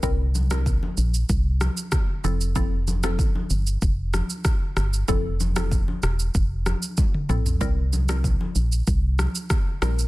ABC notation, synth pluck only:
X:1
M:4/4
L:1/16
Q:1/4=95
K:F
V:1 name="Synth pluck"
[G,CEB] z2 [G,CEB] z8 z2 [F,CEA]2 | [F,CEA] z2 [F,CEA] z12 | [F,CEA] z2 [F,CEA] z8 z2 [F,CEA]2 | [G,CEB] z2 [G,CEB] z8 z2 [G,CEB]2 |]